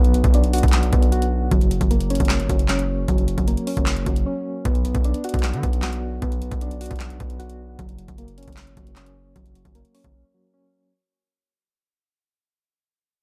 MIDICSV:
0, 0, Header, 1, 4, 480
1, 0, Start_track
1, 0, Tempo, 392157
1, 1854, Time_signature, 4, 2, 24, 8
1, 16186, End_track
2, 0, Start_track
2, 0, Title_t, "Synth keys"
2, 0, Program_c, 0, 88
2, 0, Note_on_c, 0, 59, 98
2, 0, Note_on_c, 0, 66, 85
2, 164, Note_off_c, 0, 59, 0
2, 179, Note_on_c, 0, 59, 75
2, 423, Note_on_c, 0, 62, 90
2, 639, Note_off_c, 0, 66, 0
2, 654, Note_on_c, 0, 66, 84
2, 1120, Note_off_c, 0, 59, 0
2, 1135, Note_on_c, 0, 59, 75
2, 1354, Note_off_c, 0, 66, 0
2, 1369, Note_on_c, 0, 66, 86
2, 1851, Note_off_c, 0, 66, 0
2, 1854, Note_off_c, 0, 59, 0
2, 1858, Note_on_c, 0, 54, 97
2, 1859, Note_off_c, 0, 62, 0
2, 2075, Note_off_c, 0, 54, 0
2, 2090, Note_on_c, 0, 54, 77
2, 2334, Note_on_c, 0, 58, 89
2, 2574, Note_on_c, 0, 61, 84
2, 3038, Note_off_c, 0, 54, 0
2, 3053, Note_on_c, 0, 54, 70
2, 3281, Note_off_c, 0, 61, 0
2, 3295, Note_on_c, 0, 61, 89
2, 3759, Note_off_c, 0, 54, 0
2, 3773, Note_on_c, 0, 54, 100
2, 3774, Note_off_c, 0, 58, 0
2, 4001, Note_off_c, 0, 54, 0
2, 4016, Note_on_c, 0, 54, 78
2, 4255, Note_on_c, 0, 58, 87
2, 4478, Note_off_c, 0, 61, 0
2, 4492, Note_on_c, 0, 61, 82
2, 4965, Note_off_c, 0, 54, 0
2, 4979, Note_on_c, 0, 54, 72
2, 5203, Note_off_c, 0, 61, 0
2, 5217, Note_on_c, 0, 61, 83
2, 5694, Note_off_c, 0, 58, 0
2, 5696, Note_off_c, 0, 61, 0
2, 5696, Note_on_c, 0, 59, 90
2, 5697, Note_off_c, 0, 54, 0
2, 5920, Note_off_c, 0, 59, 0
2, 5934, Note_on_c, 0, 59, 80
2, 6179, Note_on_c, 0, 62, 92
2, 6419, Note_on_c, 0, 66, 90
2, 6881, Note_off_c, 0, 59, 0
2, 6896, Note_on_c, 0, 59, 75
2, 7117, Note_off_c, 0, 66, 0
2, 7132, Note_on_c, 0, 66, 84
2, 7599, Note_off_c, 0, 59, 0
2, 7614, Note_on_c, 0, 59, 95
2, 7617, Note_off_c, 0, 62, 0
2, 7844, Note_off_c, 0, 59, 0
2, 7859, Note_on_c, 0, 59, 73
2, 8104, Note_on_c, 0, 62, 93
2, 8320, Note_off_c, 0, 66, 0
2, 8334, Note_on_c, 0, 66, 82
2, 8800, Note_off_c, 0, 59, 0
2, 8815, Note_on_c, 0, 59, 71
2, 9034, Note_off_c, 0, 66, 0
2, 9049, Note_on_c, 0, 66, 86
2, 9531, Note_off_c, 0, 66, 0
2, 9534, Note_off_c, 0, 59, 0
2, 9538, Note_on_c, 0, 54, 102
2, 9539, Note_off_c, 0, 62, 0
2, 9755, Note_off_c, 0, 54, 0
2, 9770, Note_on_c, 0, 54, 77
2, 10014, Note_on_c, 0, 58, 88
2, 10254, Note_on_c, 0, 61, 82
2, 10719, Note_off_c, 0, 54, 0
2, 10733, Note_on_c, 0, 54, 72
2, 10961, Note_off_c, 0, 61, 0
2, 10975, Note_on_c, 0, 61, 90
2, 11439, Note_off_c, 0, 54, 0
2, 11453, Note_on_c, 0, 54, 99
2, 11454, Note_off_c, 0, 58, 0
2, 11681, Note_off_c, 0, 54, 0
2, 11696, Note_on_c, 0, 54, 78
2, 11935, Note_on_c, 0, 58, 89
2, 12157, Note_off_c, 0, 61, 0
2, 12172, Note_on_c, 0, 61, 83
2, 12644, Note_off_c, 0, 54, 0
2, 12659, Note_on_c, 0, 54, 73
2, 12882, Note_off_c, 0, 61, 0
2, 12897, Note_on_c, 0, 61, 84
2, 13374, Note_off_c, 0, 58, 0
2, 13376, Note_off_c, 0, 54, 0
2, 13376, Note_off_c, 0, 61, 0
2, 16186, End_track
3, 0, Start_track
3, 0, Title_t, "808-style bass"
3, 0, Program_c, 1, 38
3, 0, Note_on_c, 1, 35, 112
3, 280, Note_off_c, 1, 35, 0
3, 293, Note_on_c, 1, 35, 103
3, 755, Note_off_c, 1, 35, 0
3, 774, Note_on_c, 1, 35, 101
3, 1119, Note_off_c, 1, 35, 0
3, 1134, Note_on_c, 1, 35, 104
3, 1825, Note_off_c, 1, 35, 0
3, 1854, Note_on_c, 1, 30, 114
3, 2200, Note_off_c, 1, 30, 0
3, 2213, Note_on_c, 1, 30, 105
3, 2674, Note_off_c, 1, 30, 0
3, 2693, Note_on_c, 1, 30, 106
3, 2934, Note_on_c, 1, 31, 97
3, 2952, Note_off_c, 1, 30, 0
3, 3048, Note_off_c, 1, 31, 0
3, 3054, Note_on_c, 1, 30, 104
3, 3745, Note_off_c, 1, 30, 0
3, 3774, Note_on_c, 1, 30, 110
3, 4120, Note_off_c, 1, 30, 0
3, 4133, Note_on_c, 1, 30, 101
3, 4364, Note_off_c, 1, 30, 0
3, 4614, Note_on_c, 1, 30, 101
3, 4960, Note_off_c, 1, 30, 0
3, 4974, Note_on_c, 1, 30, 102
3, 5204, Note_off_c, 1, 30, 0
3, 5695, Note_on_c, 1, 35, 112
3, 6040, Note_off_c, 1, 35, 0
3, 6054, Note_on_c, 1, 35, 104
3, 6284, Note_off_c, 1, 35, 0
3, 6534, Note_on_c, 1, 35, 109
3, 6774, Note_on_c, 1, 50, 99
3, 6793, Note_off_c, 1, 35, 0
3, 6888, Note_off_c, 1, 50, 0
3, 6894, Note_on_c, 1, 35, 102
3, 7585, Note_off_c, 1, 35, 0
3, 7615, Note_on_c, 1, 35, 113
3, 7960, Note_off_c, 1, 35, 0
3, 7973, Note_on_c, 1, 35, 102
3, 8434, Note_off_c, 1, 35, 0
3, 8454, Note_on_c, 1, 35, 100
3, 8800, Note_off_c, 1, 35, 0
3, 8814, Note_on_c, 1, 35, 102
3, 9505, Note_off_c, 1, 35, 0
3, 9534, Note_on_c, 1, 30, 112
3, 9880, Note_off_c, 1, 30, 0
3, 9893, Note_on_c, 1, 30, 104
3, 10355, Note_off_c, 1, 30, 0
3, 10374, Note_on_c, 1, 30, 106
3, 10614, Note_on_c, 1, 31, 94
3, 10632, Note_off_c, 1, 30, 0
3, 10728, Note_off_c, 1, 31, 0
3, 10734, Note_on_c, 1, 30, 101
3, 11425, Note_off_c, 1, 30, 0
3, 11454, Note_on_c, 1, 30, 114
3, 11800, Note_off_c, 1, 30, 0
3, 11813, Note_on_c, 1, 30, 105
3, 12044, Note_off_c, 1, 30, 0
3, 12294, Note_on_c, 1, 30, 106
3, 12409, Note_off_c, 1, 30, 0
3, 16186, End_track
4, 0, Start_track
4, 0, Title_t, "Drums"
4, 54, Note_on_c, 9, 42, 64
4, 174, Note_off_c, 9, 42, 0
4, 174, Note_on_c, 9, 42, 81
4, 293, Note_on_c, 9, 36, 91
4, 294, Note_off_c, 9, 42, 0
4, 294, Note_on_c, 9, 42, 68
4, 414, Note_off_c, 9, 42, 0
4, 414, Note_on_c, 9, 42, 75
4, 416, Note_off_c, 9, 36, 0
4, 534, Note_off_c, 9, 42, 0
4, 534, Note_on_c, 9, 42, 54
4, 654, Note_off_c, 9, 42, 0
4, 654, Note_on_c, 9, 42, 61
4, 654, Note_on_c, 9, 46, 79
4, 713, Note_off_c, 9, 42, 0
4, 713, Note_on_c, 9, 42, 60
4, 774, Note_off_c, 9, 42, 0
4, 774, Note_on_c, 9, 36, 97
4, 774, Note_on_c, 9, 42, 64
4, 776, Note_off_c, 9, 46, 0
4, 834, Note_off_c, 9, 42, 0
4, 834, Note_on_c, 9, 42, 62
4, 886, Note_on_c, 9, 39, 94
4, 894, Note_off_c, 9, 42, 0
4, 894, Note_on_c, 9, 38, 117
4, 894, Note_on_c, 9, 42, 97
4, 896, Note_off_c, 9, 36, 0
4, 1008, Note_off_c, 9, 39, 0
4, 1014, Note_off_c, 9, 42, 0
4, 1014, Note_on_c, 9, 42, 61
4, 1016, Note_off_c, 9, 38, 0
4, 1134, Note_off_c, 9, 42, 0
4, 1134, Note_on_c, 9, 36, 95
4, 1134, Note_on_c, 9, 42, 82
4, 1254, Note_off_c, 9, 42, 0
4, 1254, Note_on_c, 9, 42, 55
4, 1256, Note_off_c, 9, 36, 0
4, 1374, Note_off_c, 9, 42, 0
4, 1374, Note_on_c, 9, 42, 78
4, 1494, Note_off_c, 9, 42, 0
4, 1494, Note_on_c, 9, 42, 51
4, 1616, Note_off_c, 9, 42, 0
4, 1854, Note_on_c, 9, 36, 123
4, 1854, Note_on_c, 9, 42, 80
4, 1974, Note_off_c, 9, 42, 0
4, 1974, Note_on_c, 9, 42, 66
4, 1976, Note_off_c, 9, 36, 0
4, 2094, Note_off_c, 9, 42, 0
4, 2094, Note_on_c, 9, 42, 82
4, 2213, Note_on_c, 9, 36, 88
4, 2214, Note_off_c, 9, 42, 0
4, 2214, Note_on_c, 9, 42, 64
4, 2334, Note_off_c, 9, 42, 0
4, 2334, Note_on_c, 9, 42, 75
4, 2335, Note_off_c, 9, 36, 0
4, 2454, Note_off_c, 9, 42, 0
4, 2454, Note_on_c, 9, 42, 58
4, 2574, Note_off_c, 9, 42, 0
4, 2574, Note_on_c, 9, 42, 61
4, 2634, Note_off_c, 9, 42, 0
4, 2634, Note_on_c, 9, 42, 60
4, 2694, Note_off_c, 9, 42, 0
4, 2694, Note_on_c, 9, 36, 97
4, 2694, Note_on_c, 9, 42, 60
4, 2754, Note_off_c, 9, 42, 0
4, 2754, Note_on_c, 9, 42, 62
4, 2806, Note_on_c, 9, 39, 94
4, 2814, Note_off_c, 9, 42, 0
4, 2814, Note_on_c, 9, 38, 121
4, 2814, Note_on_c, 9, 42, 94
4, 2816, Note_off_c, 9, 36, 0
4, 2928, Note_off_c, 9, 39, 0
4, 2934, Note_off_c, 9, 42, 0
4, 2934, Note_on_c, 9, 42, 58
4, 2936, Note_off_c, 9, 38, 0
4, 3053, Note_on_c, 9, 36, 92
4, 3054, Note_off_c, 9, 42, 0
4, 3054, Note_on_c, 9, 42, 82
4, 3174, Note_off_c, 9, 42, 0
4, 3174, Note_on_c, 9, 42, 54
4, 3176, Note_off_c, 9, 36, 0
4, 3285, Note_on_c, 9, 39, 75
4, 3294, Note_off_c, 9, 42, 0
4, 3294, Note_on_c, 9, 38, 94
4, 3294, Note_on_c, 9, 42, 75
4, 3408, Note_off_c, 9, 39, 0
4, 3414, Note_off_c, 9, 42, 0
4, 3414, Note_on_c, 9, 42, 50
4, 3416, Note_off_c, 9, 38, 0
4, 3537, Note_off_c, 9, 42, 0
4, 3774, Note_on_c, 9, 36, 127
4, 3774, Note_on_c, 9, 42, 80
4, 3894, Note_off_c, 9, 42, 0
4, 3894, Note_on_c, 9, 42, 65
4, 3897, Note_off_c, 9, 36, 0
4, 4014, Note_off_c, 9, 42, 0
4, 4014, Note_on_c, 9, 42, 83
4, 4133, Note_on_c, 9, 36, 88
4, 4134, Note_off_c, 9, 42, 0
4, 4134, Note_on_c, 9, 42, 67
4, 4254, Note_off_c, 9, 42, 0
4, 4254, Note_on_c, 9, 42, 77
4, 4256, Note_off_c, 9, 36, 0
4, 4374, Note_off_c, 9, 42, 0
4, 4374, Note_on_c, 9, 42, 56
4, 4494, Note_off_c, 9, 42, 0
4, 4494, Note_on_c, 9, 42, 60
4, 4494, Note_on_c, 9, 46, 77
4, 4614, Note_off_c, 9, 42, 0
4, 4614, Note_on_c, 9, 36, 98
4, 4614, Note_on_c, 9, 42, 64
4, 4616, Note_off_c, 9, 46, 0
4, 4726, Note_on_c, 9, 39, 99
4, 4734, Note_off_c, 9, 42, 0
4, 4734, Note_on_c, 9, 38, 119
4, 4734, Note_on_c, 9, 42, 92
4, 4736, Note_off_c, 9, 36, 0
4, 4849, Note_off_c, 9, 39, 0
4, 4854, Note_off_c, 9, 42, 0
4, 4854, Note_on_c, 9, 42, 59
4, 4857, Note_off_c, 9, 38, 0
4, 4974, Note_off_c, 9, 42, 0
4, 4974, Note_on_c, 9, 36, 95
4, 4974, Note_on_c, 9, 42, 82
4, 5094, Note_off_c, 9, 42, 0
4, 5094, Note_on_c, 9, 42, 56
4, 5096, Note_off_c, 9, 36, 0
4, 5217, Note_off_c, 9, 42, 0
4, 5694, Note_on_c, 9, 36, 127
4, 5694, Note_on_c, 9, 42, 77
4, 5814, Note_off_c, 9, 42, 0
4, 5814, Note_on_c, 9, 42, 67
4, 5817, Note_off_c, 9, 36, 0
4, 5934, Note_off_c, 9, 42, 0
4, 5934, Note_on_c, 9, 42, 83
4, 6053, Note_on_c, 9, 36, 89
4, 6054, Note_off_c, 9, 42, 0
4, 6054, Note_on_c, 9, 42, 64
4, 6174, Note_off_c, 9, 42, 0
4, 6174, Note_on_c, 9, 42, 76
4, 6176, Note_off_c, 9, 36, 0
4, 6294, Note_off_c, 9, 42, 0
4, 6294, Note_on_c, 9, 42, 55
4, 6414, Note_off_c, 9, 42, 0
4, 6414, Note_on_c, 9, 42, 61
4, 6474, Note_off_c, 9, 42, 0
4, 6474, Note_on_c, 9, 42, 63
4, 6534, Note_off_c, 9, 42, 0
4, 6534, Note_on_c, 9, 36, 96
4, 6534, Note_on_c, 9, 42, 63
4, 6595, Note_off_c, 9, 42, 0
4, 6595, Note_on_c, 9, 42, 63
4, 6647, Note_on_c, 9, 39, 97
4, 6655, Note_off_c, 9, 42, 0
4, 6655, Note_on_c, 9, 38, 121
4, 6655, Note_on_c, 9, 42, 93
4, 6656, Note_off_c, 9, 36, 0
4, 6769, Note_off_c, 9, 39, 0
4, 6775, Note_off_c, 9, 42, 0
4, 6775, Note_on_c, 9, 42, 58
4, 6777, Note_off_c, 9, 38, 0
4, 6894, Note_on_c, 9, 36, 95
4, 6895, Note_off_c, 9, 42, 0
4, 6895, Note_on_c, 9, 42, 78
4, 7015, Note_off_c, 9, 42, 0
4, 7015, Note_on_c, 9, 42, 54
4, 7016, Note_off_c, 9, 36, 0
4, 7126, Note_on_c, 9, 39, 75
4, 7134, Note_on_c, 9, 38, 97
4, 7135, Note_off_c, 9, 42, 0
4, 7135, Note_on_c, 9, 42, 76
4, 7249, Note_off_c, 9, 39, 0
4, 7255, Note_off_c, 9, 42, 0
4, 7255, Note_on_c, 9, 42, 49
4, 7257, Note_off_c, 9, 38, 0
4, 7377, Note_off_c, 9, 42, 0
4, 7614, Note_on_c, 9, 42, 81
4, 7615, Note_on_c, 9, 36, 120
4, 7734, Note_off_c, 9, 42, 0
4, 7734, Note_on_c, 9, 42, 64
4, 7737, Note_off_c, 9, 36, 0
4, 7854, Note_off_c, 9, 42, 0
4, 7854, Note_on_c, 9, 42, 81
4, 7973, Note_on_c, 9, 36, 86
4, 7974, Note_off_c, 9, 42, 0
4, 7974, Note_on_c, 9, 42, 67
4, 8094, Note_off_c, 9, 42, 0
4, 8094, Note_on_c, 9, 42, 74
4, 8096, Note_off_c, 9, 36, 0
4, 8214, Note_off_c, 9, 42, 0
4, 8214, Note_on_c, 9, 42, 55
4, 8334, Note_off_c, 9, 42, 0
4, 8334, Note_on_c, 9, 42, 60
4, 8334, Note_on_c, 9, 46, 78
4, 8394, Note_off_c, 9, 42, 0
4, 8394, Note_on_c, 9, 42, 62
4, 8454, Note_off_c, 9, 42, 0
4, 8454, Note_on_c, 9, 36, 99
4, 8454, Note_on_c, 9, 42, 63
4, 8457, Note_off_c, 9, 46, 0
4, 8514, Note_off_c, 9, 42, 0
4, 8514, Note_on_c, 9, 42, 63
4, 8566, Note_on_c, 9, 39, 99
4, 8574, Note_off_c, 9, 42, 0
4, 8574, Note_on_c, 9, 38, 122
4, 8574, Note_on_c, 9, 42, 95
4, 8576, Note_off_c, 9, 36, 0
4, 8689, Note_off_c, 9, 39, 0
4, 8694, Note_off_c, 9, 42, 0
4, 8694, Note_on_c, 9, 42, 58
4, 8697, Note_off_c, 9, 38, 0
4, 8814, Note_off_c, 9, 42, 0
4, 8814, Note_on_c, 9, 36, 96
4, 8814, Note_on_c, 9, 42, 79
4, 8934, Note_off_c, 9, 42, 0
4, 8934, Note_on_c, 9, 42, 56
4, 8936, Note_off_c, 9, 36, 0
4, 9054, Note_off_c, 9, 42, 0
4, 9054, Note_on_c, 9, 42, 74
4, 9174, Note_off_c, 9, 42, 0
4, 9174, Note_on_c, 9, 42, 49
4, 9296, Note_off_c, 9, 42, 0
4, 9534, Note_on_c, 9, 36, 123
4, 9534, Note_on_c, 9, 42, 80
4, 9654, Note_off_c, 9, 42, 0
4, 9654, Note_on_c, 9, 42, 66
4, 9657, Note_off_c, 9, 36, 0
4, 9774, Note_off_c, 9, 42, 0
4, 9774, Note_on_c, 9, 42, 82
4, 9893, Note_on_c, 9, 36, 89
4, 9894, Note_off_c, 9, 42, 0
4, 9894, Note_on_c, 9, 42, 64
4, 10014, Note_off_c, 9, 42, 0
4, 10014, Note_on_c, 9, 42, 75
4, 10015, Note_off_c, 9, 36, 0
4, 10134, Note_off_c, 9, 42, 0
4, 10134, Note_on_c, 9, 42, 57
4, 10254, Note_off_c, 9, 42, 0
4, 10254, Note_on_c, 9, 42, 63
4, 10314, Note_off_c, 9, 42, 0
4, 10314, Note_on_c, 9, 42, 63
4, 10374, Note_off_c, 9, 42, 0
4, 10374, Note_on_c, 9, 36, 96
4, 10374, Note_on_c, 9, 42, 61
4, 10434, Note_off_c, 9, 42, 0
4, 10434, Note_on_c, 9, 42, 62
4, 10486, Note_on_c, 9, 39, 96
4, 10494, Note_off_c, 9, 42, 0
4, 10494, Note_on_c, 9, 38, 115
4, 10494, Note_on_c, 9, 42, 96
4, 10496, Note_off_c, 9, 36, 0
4, 10608, Note_off_c, 9, 39, 0
4, 10614, Note_off_c, 9, 42, 0
4, 10614, Note_on_c, 9, 42, 61
4, 10617, Note_off_c, 9, 38, 0
4, 10734, Note_off_c, 9, 42, 0
4, 10734, Note_on_c, 9, 36, 96
4, 10734, Note_on_c, 9, 42, 81
4, 10854, Note_off_c, 9, 42, 0
4, 10854, Note_on_c, 9, 42, 55
4, 10856, Note_off_c, 9, 36, 0
4, 10965, Note_on_c, 9, 39, 77
4, 10973, Note_on_c, 9, 38, 97
4, 10974, Note_off_c, 9, 42, 0
4, 10974, Note_on_c, 9, 42, 80
4, 11087, Note_off_c, 9, 39, 0
4, 11094, Note_off_c, 9, 42, 0
4, 11094, Note_on_c, 9, 42, 50
4, 11096, Note_off_c, 9, 38, 0
4, 11216, Note_off_c, 9, 42, 0
4, 11454, Note_on_c, 9, 36, 127
4, 11454, Note_on_c, 9, 42, 82
4, 11574, Note_off_c, 9, 42, 0
4, 11574, Note_on_c, 9, 42, 64
4, 11577, Note_off_c, 9, 36, 0
4, 11694, Note_off_c, 9, 42, 0
4, 11694, Note_on_c, 9, 42, 83
4, 11813, Note_on_c, 9, 36, 88
4, 11814, Note_off_c, 9, 42, 0
4, 11814, Note_on_c, 9, 42, 65
4, 11934, Note_off_c, 9, 42, 0
4, 11934, Note_on_c, 9, 42, 76
4, 11936, Note_off_c, 9, 36, 0
4, 12054, Note_off_c, 9, 42, 0
4, 12054, Note_on_c, 9, 42, 57
4, 12174, Note_off_c, 9, 42, 0
4, 12174, Note_on_c, 9, 42, 59
4, 12174, Note_on_c, 9, 46, 77
4, 12294, Note_off_c, 9, 42, 0
4, 12294, Note_on_c, 9, 36, 94
4, 12294, Note_on_c, 9, 42, 64
4, 12296, Note_off_c, 9, 46, 0
4, 12416, Note_off_c, 9, 36, 0
4, 12416, Note_off_c, 9, 42, 0
4, 16186, End_track
0, 0, End_of_file